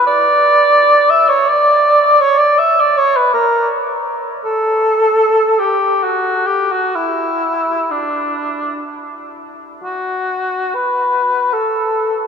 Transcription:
0.07 1.12 D5 loud
1.10 1.30 E5 medium
1.29 1.50 C#5 medium
1.48 2.22 D5 medium
2.21 2.40 C#5 loud
2.38 2.60 D5 medium
2.58 2.82 E5 medium
2.81 2.99 D5 medium
2.97 3.18 C#5 medium
3.16 3.33 B4 medium
3.33 3.68 A#4 medium
4.45 5.61 A4 loud
5.59 6.05 G4 medium
6.03 6.48 F#4 medium
6.47 6.73 G4 medium
6.72 6.97 F#4 medium
6.96 7.92 E4 medium
7.91 8.82 D4 medium
9.84 10.76 F#4 medium
10.75 11.55 B4 medium
11.53 12.27 A4 medium

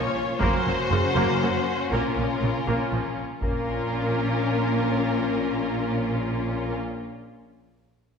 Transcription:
0.00 0.37 A#3 soft
0.00 0.38 C#4 soft
0.00 0.37 F4 soft
0.00 0.38 F4 soft
0.00 0.41 C#5 medium
0.40 0.50 F#1 medium
0.40 0.49 F#2 medium
0.40 0.64 A#3 medium
0.40 1.88 A#3 medium
0.40 3.18 C#4 medium
0.40 1.89 F#4 medium
0.40 1.88 F#4 medium
0.40 1.88 C5 medium
0.40 taiko medium
0.66 0.74 F#1 soft
0.66 0.74 F#2 soft
0.66 0.74 F#3 soft
0.66 0.74 A#3 soft
0.91 0.99 F#1 soft
0.91 0.99 F#2 soft
0.91 0.99 C#3 medium
0.91 1.00 A#3 soft
1.16 1.24 F#1 medium
1.16 1.25 F#2 medium
1.16 1.40 A#3 medium
1.41 1.49 F#1 soft
1.41 1.50 F#2 soft
1.41 1.50 F#3 soft
1.41 1.50 A#3 soft
1.91 2.00 A#1 soft
1.91 1.99 A#2 soft
1.91 2.16 A#3 soft
1.91 3.14 C#4 soft
1.91 3.22 F4 soft
1.91 3.13 F4 soft
1.91 3.18 A#4 medium
2.17 2.25 A#1 soft
2.17 2.25 A#2 soft
2.17 2.26 F3 soft
2.17 2.26 A#3 soft
2.42 2.50 A#1 soft
2.42 2.50 A#2 soft
2.42 2.50 C#3 soft
2.42 2.50 A#3 soft
2.67 2.75 A#1 soft
2.67 2.76 A#2 soft
2.67 2.91 A#3 soft
2.92 3.00 A#1 soft
2.92 3.01 A#2 soft
2.92 3.00 F3 soft
2.92 3.01 A#3 soft
3.41 6.75 A#1 soft
3.41 6.75 A#2 soft
3.41 6.75 A#3 soft
3.41 6.74 C#4 soft
3.41 6.75 C#4 soft
3.41 6.74 F4 soft
3.41 6.75 F4 soft
3.41 6.74 A#4 medium
3.41 taiko soft

